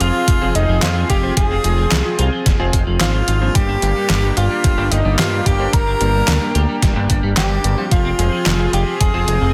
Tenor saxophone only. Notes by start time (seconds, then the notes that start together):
0.01 F4
0.56 D#4
0.83 F4
1.10 G4
1.37 G#4
3.01 F4
3.55 G4
4.37 F4
4.91 D#4
5.19 F4
5.46 G4
5.73 A#4
7.37 G4
7.92 F4
8.73 G4
9.00 G#4